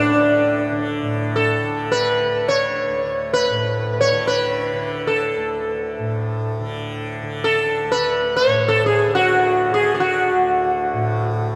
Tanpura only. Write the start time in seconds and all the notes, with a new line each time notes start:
Already playing: D2 A2 D3
0.09 D3
0.72 D3
1.02 A2
1.64 D3
2.25 D3
2.89 D2
3.50 A2
4.12 D3
4.73 D3
5.36 D2
5.99 A2
6.60 D3
7.23 D3
7.84 D2
8.47 A2
9.07 D3
9.70 D3
10.31 D2
10.93 A2